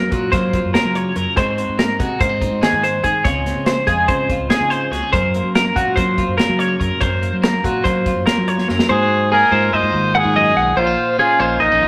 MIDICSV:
0, 0, Header, 1, 6, 480
1, 0, Start_track
1, 0, Tempo, 417537
1, 1575, Time_signature, 9, 3, 24, 8
1, 13656, End_track
2, 0, Start_track
2, 0, Title_t, "Clean electric guitar"
2, 0, Program_c, 0, 27
2, 0, Note_on_c, 0, 70, 71
2, 130, Note_off_c, 0, 70, 0
2, 130, Note_on_c, 0, 66, 61
2, 366, Note_on_c, 0, 72, 72
2, 371, Note_off_c, 0, 66, 0
2, 847, Note_off_c, 0, 72, 0
2, 852, Note_on_c, 0, 70, 64
2, 1097, Note_off_c, 0, 70, 0
2, 1097, Note_on_c, 0, 73, 58
2, 1334, Note_off_c, 0, 73, 0
2, 1334, Note_on_c, 0, 70, 57
2, 1575, Note_off_c, 0, 70, 0
2, 1580, Note_on_c, 0, 72, 73
2, 2057, Note_on_c, 0, 70, 70
2, 2059, Note_off_c, 0, 72, 0
2, 2297, Note_off_c, 0, 70, 0
2, 2297, Note_on_c, 0, 66, 61
2, 2537, Note_off_c, 0, 66, 0
2, 2537, Note_on_c, 0, 72, 77
2, 3018, Note_off_c, 0, 72, 0
2, 3023, Note_on_c, 0, 68, 69
2, 3260, Note_on_c, 0, 72, 63
2, 3261, Note_off_c, 0, 68, 0
2, 3491, Note_on_c, 0, 68, 66
2, 3499, Note_off_c, 0, 72, 0
2, 3731, Note_on_c, 0, 73, 77
2, 3735, Note_off_c, 0, 68, 0
2, 4214, Note_off_c, 0, 73, 0
2, 4218, Note_on_c, 0, 72, 68
2, 4448, Note_on_c, 0, 68, 69
2, 4459, Note_off_c, 0, 72, 0
2, 4692, Note_on_c, 0, 72, 74
2, 4694, Note_off_c, 0, 68, 0
2, 5170, Note_off_c, 0, 72, 0
2, 5174, Note_on_c, 0, 68, 67
2, 5406, Note_off_c, 0, 68, 0
2, 5406, Note_on_c, 0, 72, 67
2, 5655, Note_off_c, 0, 72, 0
2, 5655, Note_on_c, 0, 68, 59
2, 5889, Note_off_c, 0, 68, 0
2, 5894, Note_on_c, 0, 72, 75
2, 6378, Note_off_c, 0, 72, 0
2, 6386, Note_on_c, 0, 70, 69
2, 6621, Note_on_c, 0, 66, 68
2, 6624, Note_off_c, 0, 70, 0
2, 6848, Note_on_c, 0, 72, 71
2, 6862, Note_off_c, 0, 66, 0
2, 7325, Note_off_c, 0, 72, 0
2, 7329, Note_on_c, 0, 70, 64
2, 7575, Note_off_c, 0, 70, 0
2, 7575, Note_on_c, 0, 73, 64
2, 7814, Note_off_c, 0, 73, 0
2, 7814, Note_on_c, 0, 70, 64
2, 8054, Note_off_c, 0, 70, 0
2, 8054, Note_on_c, 0, 72, 73
2, 8539, Note_off_c, 0, 72, 0
2, 8549, Note_on_c, 0, 70, 68
2, 8785, Note_off_c, 0, 70, 0
2, 8785, Note_on_c, 0, 66, 65
2, 9012, Note_on_c, 0, 72, 69
2, 9025, Note_off_c, 0, 66, 0
2, 9497, Note_off_c, 0, 72, 0
2, 9502, Note_on_c, 0, 70, 68
2, 9747, Note_off_c, 0, 70, 0
2, 9747, Note_on_c, 0, 73, 63
2, 9981, Note_off_c, 0, 73, 0
2, 9981, Note_on_c, 0, 70, 67
2, 10219, Note_off_c, 0, 70, 0
2, 10224, Note_on_c, 0, 72, 81
2, 10703, Note_off_c, 0, 72, 0
2, 10711, Note_on_c, 0, 68, 74
2, 10942, Note_on_c, 0, 72, 63
2, 10947, Note_off_c, 0, 68, 0
2, 11186, Note_off_c, 0, 72, 0
2, 11186, Note_on_c, 0, 75, 77
2, 11662, Note_off_c, 0, 75, 0
2, 11667, Note_on_c, 0, 78, 73
2, 11903, Note_off_c, 0, 78, 0
2, 11911, Note_on_c, 0, 75, 72
2, 12145, Note_off_c, 0, 75, 0
2, 12149, Note_on_c, 0, 78, 68
2, 12380, Note_on_c, 0, 72, 81
2, 12384, Note_off_c, 0, 78, 0
2, 12858, Note_off_c, 0, 72, 0
2, 12867, Note_on_c, 0, 68, 74
2, 13102, Note_off_c, 0, 68, 0
2, 13102, Note_on_c, 0, 72, 72
2, 13336, Note_on_c, 0, 75, 79
2, 13339, Note_off_c, 0, 72, 0
2, 13656, Note_off_c, 0, 75, 0
2, 13656, End_track
3, 0, Start_track
3, 0, Title_t, "Trumpet"
3, 0, Program_c, 1, 56
3, 10237, Note_on_c, 1, 68, 87
3, 10677, Note_off_c, 1, 68, 0
3, 10720, Note_on_c, 1, 70, 85
3, 11188, Note_on_c, 1, 72, 89
3, 11205, Note_off_c, 1, 70, 0
3, 11689, Note_on_c, 1, 68, 82
3, 11706, Note_off_c, 1, 72, 0
3, 12382, Note_off_c, 1, 68, 0
3, 12389, Note_on_c, 1, 65, 86
3, 12830, Note_off_c, 1, 65, 0
3, 12868, Note_on_c, 1, 65, 84
3, 13340, Note_on_c, 1, 63, 79
3, 13357, Note_off_c, 1, 65, 0
3, 13656, Note_off_c, 1, 63, 0
3, 13656, End_track
4, 0, Start_track
4, 0, Title_t, "Clean electric guitar"
4, 0, Program_c, 2, 27
4, 0, Note_on_c, 2, 42, 61
4, 0, Note_on_c, 2, 54, 54
4, 0, Note_on_c, 2, 58, 52
4, 0, Note_on_c, 2, 70, 57
4, 138, Note_off_c, 2, 54, 0
4, 142, Note_on_c, 2, 54, 56
4, 148, Note_on_c, 2, 65, 48
4, 370, Note_off_c, 2, 58, 0
4, 384, Note_on_c, 2, 58, 54
4, 609, Note_off_c, 2, 65, 0
4, 623, Note_on_c, 2, 65, 53
4, 855, Note_off_c, 2, 70, 0
4, 858, Note_on_c, 2, 49, 50
4, 868, Note_on_c, 2, 70, 48
4, 1313, Note_off_c, 2, 42, 0
4, 1324, Note_off_c, 2, 70, 0
4, 1327, Note_on_c, 2, 42, 62
4, 1338, Note_on_c, 2, 70, 48
4, 1548, Note_off_c, 2, 70, 0
4, 1551, Note_off_c, 2, 65, 0
4, 1568, Note_off_c, 2, 42, 0
4, 1573, Note_on_c, 2, 44, 60
4, 1577, Note_off_c, 2, 49, 0
4, 1580, Note_off_c, 2, 54, 0
4, 1581, Note_off_c, 2, 58, 0
4, 1585, Note_on_c, 2, 56, 52
4, 1588, Note_on_c, 2, 60, 52
4, 1597, Note_on_c, 2, 63, 49
4, 1608, Note_on_c, 2, 66, 56
4, 1811, Note_off_c, 2, 60, 0
4, 1815, Note_on_c, 2, 60, 51
4, 2285, Note_off_c, 2, 63, 0
4, 2287, Note_off_c, 2, 56, 0
4, 2291, Note_on_c, 2, 56, 54
4, 2299, Note_on_c, 2, 63, 49
4, 2522, Note_off_c, 2, 60, 0
4, 2527, Note_on_c, 2, 58, 52
4, 2636, Note_off_c, 2, 58, 0
4, 2636, Note_on_c, 2, 60, 42
4, 2757, Note_off_c, 2, 63, 0
4, 2771, Note_on_c, 2, 63, 50
4, 2996, Note_off_c, 2, 66, 0
4, 3003, Note_on_c, 2, 51, 54
4, 3013, Note_on_c, 2, 66, 42
4, 3487, Note_off_c, 2, 44, 0
4, 3495, Note_off_c, 2, 66, 0
4, 3498, Note_on_c, 2, 44, 56
4, 3509, Note_on_c, 2, 68, 42
4, 3704, Note_off_c, 2, 51, 0
4, 3707, Note_off_c, 2, 63, 0
4, 3708, Note_off_c, 2, 56, 0
4, 3711, Note_off_c, 2, 44, 0
4, 3713, Note_off_c, 2, 68, 0
4, 3727, Note_on_c, 2, 49, 59
4, 3729, Note_off_c, 2, 60, 0
4, 3736, Note_on_c, 2, 56, 41
4, 3741, Note_on_c, 2, 60, 47
4, 3753, Note_on_c, 2, 65, 44
4, 3760, Note_on_c, 2, 68, 56
4, 3963, Note_off_c, 2, 60, 0
4, 3977, Note_on_c, 2, 60, 53
4, 4434, Note_off_c, 2, 56, 0
4, 4447, Note_on_c, 2, 56, 59
4, 4456, Note_off_c, 2, 65, 0
4, 4461, Note_on_c, 2, 65, 47
4, 4682, Note_off_c, 2, 60, 0
4, 4696, Note_on_c, 2, 60, 54
4, 4948, Note_off_c, 2, 65, 0
4, 4952, Note_on_c, 2, 65, 54
4, 5164, Note_off_c, 2, 68, 0
4, 5170, Note_on_c, 2, 44, 55
4, 5178, Note_on_c, 2, 68, 55
4, 5632, Note_off_c, 2, 49, 0
4, 5645, Note_on_c, 2, 49, 55
4, 5647, Note_off_c, 2, 68, 0
4, 5651, Note_on_c, 2, 66, 50
4, 5656, Note_off_c, 2, 44, 0
4, 5779, Note_off_c, 2, 66, 0
4, 5779, Note_on_c, 2, 68, 45
4, 5867, Note_off_c, 2, 56, 0
4, 5871, Note_off_c, 2, 60, 0
4, 5894, Note_off_c, 2, 49, 0
4, 5901, Note_off_c, 2, 68, 0
4, 5903, Note_on_c, 2, 42, 60
4, 5910, Note_on_c, 2, 70, 55
4, 5937, Note_off_c, 2, 65, 0
4, 6158, Note_on_c, 2, 58, 55
4, 6619, Note_on_c, 2, 54, 57
4, 6630, Note_on_c, 2, 65, 50
4, 6864, Note_off_c, 2, 58, 0
4, 6868, Note_on_c, 2, 58, 58
4, 7098, Note_off_c, 2, 65, 0
4, 7102, Note_on_c, 2, 65, 55
4, 7339, Note_on_c, 2, 49, 51
4, 7341, Note_off_c, 2, 70, 0
4, 7346, Note_on_c, 2, 70, 51
4, 7790, Note_off_c, 2, 42, 0
4, 7804, Note_on_c, 2, 42, 57
4, 7808, Note_off_c, 2, 70, 0
4, 7812, Note_on_c, 2, 70, 47
4, 8033, Note_off_c, 2, 42, 0
4, 8047, Note_on_c, 2, 42, 57
4, 8057, Note_off_c, 2, 70, 0
4, 8061, Note_off_c, 2, 49, 0
4, 8061, Note_on_c, 2, 70, 54
4, 8082, Note_off_c, 2, 65, 0
4, 8284, Note_off_c, 2, 58, 0
4, 8298, Note_on_c, 2, 58, 50
4, 8775, Note_off_c, 2, 54, 0
4, 8788, Note_on_c, 2, 54, 51
4, 8799, Note_on_c, 2, 65, 50
4, 9021, Note_off_c, 2, 58, 0
4, 9037, Note_on_c, 2, 58, 53
4, 9259, Note_off_c, 2, 65, 0
4, 9272, Note_on_c, 2, 65, 54
4, 9975, Note_off_c, 2, 42, 0
4, 9988, Note_on_c, 2, 42, 50
4, 10193, Note_off_c, 2, 70, 0
4, 10199, Note_off_c, 2, 65, 0
4, 10225, Note_off_c, 2, 42, 0
4, 10232, Note_on_c, 2, 44, 63
4, 10241, Note_on_c, 2, 66, 59
4, 10706, Note_off_c, 2, 58, 0
4, 10719, Note_on_c, 2, 58, 58
4, 10934, Note_off_c, 2, 54, 0
4, 10939, Note_on_c, 2, 56, 59
4, 10951, Note_on_c, 2, 65, 57
4, 11185, Note_off_c, 2, 58, 0
4, 11190, Note_on_c, 2, 58, 55
4, 11405, Note_on_c, 2, 51, 62
4, 11899, Note_off_c, 2, 44, 0
4, 11903, Note_on_c, 2, 42, 65
4, 12136, Note_off_c, 2, 42, 0
4, 12141, Note_on_c, 2, 44, 55
4, 12343, Note_off_c, 2, 51, 0
4, 12349, Note_off_c, 2, 56, 0
4, 12355, Note_off_c, 2, 65, 0
4, 12370, Note_off_c, 2, 44, 0
4, 12375, Note_on_c, 2, 46, 54
4, 12376, Note_on_c, 2, 61, 48
4, 12388, Note_off_c, 2, 66, 0
4, 12494, Note_off_c, 2, 61, 0
4, 12494, Note_on_c, 2, 63, 52
4, 12857, Note_off_c, 2, 58, 0
4, 12862, Note_on_c, 2, 61, 57
4, 13095, Note_off_c, 2, 63, 0
4, 13101, Note_on_c, 2, 58, 65
4, 13108, Note_on_c, 2, 63, 55
4, 13334, Note_off_c, 2, 61, 0
4, 13339, Note_off_c, 2, 58, 0
4, 13339, Note_on_c, 2, 58, 59
4, 13470, Note_off_c, 2, 58, 0
4, 13470, Note_on_c, 2, 61, 52
4, 13578, Note_on_c, 2, 53, 63
4, 13656, Note_off_c, 2, 46, 0
4, 13656, Note_off_c, 2, 53, 0
4, 13656, Note_off_c, 2, 61, 0
4, 13656, Note_off_c, 2, 63, 0
4, 13656, End_track
5, 0, Start_track
5, 0, Title_t, "Fingered electric bass"
5, 0, Program_c, 3, 33
5, 143, Note_on_c, 3, 46, 73
5, 341, Note_off_c, 3, 46, 0
5, 379, Note_on_c, 3, 54, 84
5, 680, Note_off_c, 3, 54, 0
5, 745, Note_on_c, 3, 42, 65
5, 841, Note_off_c, 3, 42, 0
5, 979, Note_on_c, 3, 54, 71
5, 1280, Note_off_c, 3, 54, 0
5, 1334, Note_on_c, 3, 42, 70
5, 1436, Note_off_c, 3, 42, 0
5, 1578, Note_on_c, 3, 44, 79
5, 1880, Note_off_c, 3, 44, 0
5, 1943, Note_on_c, 3, 44, 74
5, 2243, Note_off_c, 3, 44, 0
5, 2298, Note_on_c, 3, 48, 81
5, 2499, Note_off_c, 3, 48, 0
5, 2534, Note_on_c, 3, 44, 76
5, 2838, Note_off_c, 3, 44, 0
5, 2885, Note_on_c, 3, 44, 71
5, 2991, Note_off_c, 3, 44, 0
5, 3137, Note_on_c, 3, 44, 79
5, 3440, Note_off_c, 3, 44, 0
5, 3501, Note_on_c, 3, 44, 67
5, 3601, Note_off_c, 3, 44, 0
5, 3734, Note_on_c, 3, 37, 85
5, 4039, Note_off_c, 3, 37, 0
5, 4091, Note_on_c, 3, 49, 64
5, 4398, Note_off_c, 3, 49, 0
5, 4452, Note_on_c, 3, 41, 75
5, 4658, Note_off_c, 3, 41, 0
5, 4695, Note_on_c, 3, 49, 85
5, 5000, Note_off_c, 3, 49, 0
5, 5050, Note_on_c, 3, 37, 74
5, 5155, Note_off_c, 3, 37, 0
5, 5292, Note_on_c, 3, 49, 83
5, 5599, Note_off_c, 3, 49, 0
5, 5648, Note_on_c, 3, 37, 65
5, 5754, Note_off_c, 3, 37, 0
5, 5903, Note_on_c, 3, 42, 74
5, 6205, Note_off_c, 3, 42, 0
5, 6247, Note_on_c, 3, 54, 73
5, 6556, Note_off_c, 3, 54, 0
5, 6623, Note_on_c, 3, 46, 71
5, 6825, Note_off_c, 3, 46, 0
5, 6859, Note_on_c, 3, 54, 83
5, 7163, Note_off_c, 3, 54, 0
5, 7214, Note_on_c, 3, 42, 67
5, 7318, Note_off_c, 3, 42, 0
5, 7457, Note_on_c, 3, 54, 76
5, 7763, Note_off_c, 3, 54, 0
5, 7825, Note_on_c, 3, 42, 72
5, 7925, Note_off_c, 3, 42, 0
5, 8070, Note_on_c, 3, 42, 81
5, 8370, Note_off_c, 3, 42, 0
5, 8422, Note_on_c, 3, 54, 64
5, 8725, Note_off_c, 3, 54, 0
5, 8783, Note_on_c, 3, 46, 69
5, 8985, Note_off_c, 3, 46, 0
5, 9032, Note_on_c, 3, 54, 79
5, 9331, Note_off_c, 3, 54, 0
5, 9382, Note_on_c, 3, 42, 60
5, 9483, Note_off_c, 3, 42, 0
5, 9631, Note_on_c, 3, 54, 75
5, 9930, Note_off_c, 3, 54, 0
5, 9997, Note_on_c, 3, 42, 68
5, 10092, Note_off_c, 3, 42, 0
5, 10232, Note_on_c, 3, 44, 89
5, 10833, Note_off_c, 3, 44, 0
5, 10939, Note_on_c, 3, 44, 88
5, 11142, Note_off_c, 3, 44, 0
5, 11191, Note_on_c, 3, 44, 80
5, 11288, Note_off_c, 3, 44, 0
5, 11299, Note_on_c, 3, 44, 80
5, 11401, Note_off_c, 3, 44, 0
5, 11433, Note_on_c, 3, 44, 75
5, 11730, Note_off_c, 3, 44, 0
5, 11778, Note_on_c, 3, 44, 92
5, 12081, Note_off_c, 3, 44, 0
5, 12145, Note_on_c, 3, 35, 79
5, 12344, Note_off_c, 3, 35, 0
5, 12379, Note_on_c, 3, 34, 100
5, 12581, Note_off_c, 3, 34, 0
5, 13107, Note_on_c, 3, 34, 84
5, 13304, Note_off_c, 3, 34, 0
5, 13350, Note_on_c, 3, 34, 83
5, 13445, Note_off_c, 3, 34, 0
5, 13473, Note_on_c, 3, 34, 89
5, 13566, Note_off_c, 3, 34, 0
5, 13596, Note_on_c, 3, 34, 89
5, 13656, Note_off_c, 3, 34, 0
5, 13656, End_track
6, 0, Start_track
6, 0, Title_t, "Drums"
6, 136, Note_on_c, 9, 42, 54
6, 138, Note_on_c, 9, 36, 72
6, 251, Note_off_c, 9, 42, 0
6, 253, Note_off_c, 9, 36, 0
6, 377, Note_on_c, 9, 36, 94
6, 378, Note_on_c, 9, 42, 72
6, 381, Note_on_c, 9, 38, 29
6, 492, Note_off_c, 9, 36, 0
6, 492, Note_off_c, 9, 42, 0
6, 496, Note_off_c, 9, 38, 0
6, 614, Note_on_c, 9, 42, 52
6, 615, Note_on_c, 9, 36, 70
6, 729, Note_off_c, 9, 42, 0
6, 730, Note_off_c, 9, 36, 0
6, 859, Note_on_c, 9, 42, 69
6, 863, Note_on_c, 9, 38, 88
6, 974, Note_off_c, 9, 42, 0
6, 978, Note_off_c, 9, 38, 0
6, 1096, Note_on_c, 9, 42, 55
6, 1211, Note_off_c, 9, 42, 0
6, 1331, Note_on_c, 9, 42, 51
6, 1446, Note_off_c, 9, 42, 0
6, 1575, Note_on_c, 9, 36, 90
6, 1578, Note_on_c, 9, 42, 71
6, 1690, Note_off_c, 9, 36, 0
6, 1693, Note_off_c, 9, 42, 0
6, 1818, Note_on_c, 9, 42, 55
6, 1933, Note_off_c, 9, 42, 0
6, 2056, Note_on_c, 9, 42, 74
6, 2060, Note_on_c, 9, 38, 95
6, 2171, Note_off_c, 9, 42, 0
6, 2175, Note_off_c, 9, 38, 0
6, 2297, Note_on_c, 9, 36, 74
6, 2299, Note_on_c, 9, 42, 56
6, 2412, Note_off_c, 9, 36, 0
6, 2414, Note_off_c, 9, 42, 0
6, 2535, Note_on_c, 9, 42, 80
6, 2536, Note_on_c, 9, 36, 90
6, 2650, Note_off_c, 9, 42, 0
6, 2651, Note_off_c, 9, 36, 0
6, 2777, Note_on_c, 9, 36, 69
6, 2782, Note_on_c, 9, 42, 55
6, 2892, Note_off_c, 9, 36, 0
6, 2897, Note_off_c, 9, 42, 0
6, 3020, Note_on_c, 9, 42, 76
6, 3023, Note_on_c, 9, 38, 93
6, 3135, Note_off_c, 9, 42, 0
6, 3138, Note_off_c, 9, 38, 0
6, 3262, Note_on_c, 9, 42, 59
6, 3266, Note_on_c, 9, 38, 28
6, 3377, Note_off_c, 9, 42, 0
6, 3381, Note_off_c, 9, 38, 0
6, 3493, Note_on_c, 9, 42, 55
6, 3497, Note_on_c, 9, 36, 59
6, 3608, Note_off_c, 9, 42, 0
6, 3612, Note_off_c, 9, 36, 0
6, 3737, Note_on_c, 9, 36, 89
6, 3737, Note_on_c, 9, 42, 73
6, 3852, Note_off_c, 9, 36, 0
6, 3852, Note_off_c, 9, 42, 0
6, 3981, Note_on_c, 9, 42, 51
6, 3984, Note_on_c, 9, 38, 29
6, 4096, Note_off_c, 9, 42, 0
6, 4099, Note_off_c, 9, 38, 0
6, 4209, Note_on_c, 9, 42, 74
6, 4212, Note_on_c, 9, 38, 87
6, 4324, Note_off_c, 9, 42, 0
6, 4327, Note_off_c, 9, 38, 0
6, 4452, Note_on_c, 9, 42, 52
6, 4456, Note_on_c, 9, 36, 67
6, 4567, Note_off_c, 9, 42, 0
6, 4571, Note_off_c, 9, 36, 0
6, 4693, Note_on_c, 9, 42, 70
6, 4698, Note_on_c, 9, 36, 91
6, 4808, Note_off_c, 9, 42, 0
6, 4813, Note_off_c, 9, 36, 0
6, 4938, Note_on_c, 9, 42, 53
6, 4939, Note_on_c, 9, 36, 68
6, 5053, Note_off_c, 9, 42, 0
6, 5054, Note_off_c, 9, 36, 0
6, 5174, Note_on_c, 9, 42, 66
6, 5177, Note_on_c, 9, 38, 94
6, 5289, Note_off_c, 9, 42, 0
6, 5292, Note_off_c, 9, 38, 0
6, 5417, Note_on_c, 9, 42, 48
6, 5532, Note_off_c, 9, 42, 0
6, 5666, Note_on_c, 9, 42, 52
6, 5670, Note_on_c, 9, 38, 29
6, 5781, Note_off_c, 9, 42, 0
6, 5785, Note_off_c, 9, 38, 0
6, 5902, Note_on_c, 9, 36, 88
6, 5905, Note_on_c, 9, 42, 67
6, 6017, Note_off_c, 9, 36, 0
6, 6020, Note_off_c, 9, 42, 0
6, 6143, Note_on_c, 9, 42, 54
6, 6257, Note_off_c, 9, 42, 0
6, 6384, Note_on_c, 9, 42, 75
6, 6387, Note_on_c, 9, 38, 94
6, 6499, Note_off_c, 9, 42, 0
6, 6502, Note_off_c, 9, 38, 0
6, 6625, Note_on_c, 9, 36, 68
6, 6634, Note_on_c, 9, 42, 58
6, 6740, Note_off_c, 9, 36, 0
6, 6749, Note_off_c, 9, 42, 0
6, 6865, Note_on_c, 9, 36, 86
6, 6868, Note_on_c, 9, 42, 75
6, 6980, Note_off_c, 9, 36, 0
6, 6983, Note_off_c, 9, 42, 0
6, 7105, Note_on_c, 9, 36, 69
6, 7108, Note_on_c, 9, 42, 51
6, 7220, Note_off_c, 9, 36, 0
6, 7223, Note_off_c, 9, 42, 0
6, 7349, Note_on_c, 9, 42, 78
6, 7353, Note_on_c, 9, 38, 85
6, 7464, Note_off_c, 9, 42, 0
6, 7468, Note_off_c, 9, 38, 0
6, 7588, Note_on_c, 9, 42, 49
6, 7703, Note_off_c, 9, 42, 0
6, 7824, Note_on_c, 9, 36, 60
6, 7830, Note_on_c, 9, 42, 54
6, 7939, Note_off_c, 9, 36, 0
6, 7945, Note_off_c, 9, 42, 0
6, 8058, Note_on_c, 9, 42, 65
6, 8064, Note_on_c, 9, 36, 91
6, 8173, Note_off_c, 9, 42, 0
6, 8179, Note_off_c, 9, 36, 0
6, 8309, Note_on_c, 9, 42, 53
6, 8424, Note_off_c, 9, 42, 0
6, 8546, Note_on_c, 9, 42, 62
6, 8549, Note_on_c, 9, 38, 88
6, 8661, Note_off_c, 9, 42, 0
6, 8664, Note_off_c, 9, 38, 0
6, 8787, Note_on_c, 9, 36, 67
6, 8793, Note_on_c, 9, 42, 56
6, 8902, Note_off_c, 9, 36, 0
6, 8908, Note_off_c, 9, 42, 0
6, 9026, Note_on_c, 9, 36, 84
6, 9028, Note_on_c, 9, 42, 73
6, 9141, Note_off_c, 9, 36, 0
6, 9143, Note_off_c, 9, 42, 0
6, 9266, Note_on_c, 9, 36, 68
6, 9267, Note_on_c, 9, 42, 49
6, 9381, Note_off_c, 9, 36, 0
6, 9382, Note_off_c, 9, 42, 0
6, 9506, Note_on_c, 9, 42, 69
6, 9510, Note_on_c, 9, 38, 88
6, 9621, Note_off_c, 9, 42, 0
6, 9625, Note_off_c, 9, 38, 0
6, 9747, Note_on_c, 9, 42, 55
6, 9862, Note_off_c, 9, 42, 0
6, 9867, Note_on_c, 9, 38, 42
6, 9982, Note_off_c, 9, 38, 0
6, 9990, Note_on_c, 9, 38, 54
6, 10105, Note_off_c, 9, 38, 0
6, 10108, Note_on_c, 9, 38, 78
6, 10223, Note_off_c, 9, 38, 0
6, 13656, End_track
0, 0, End_of_file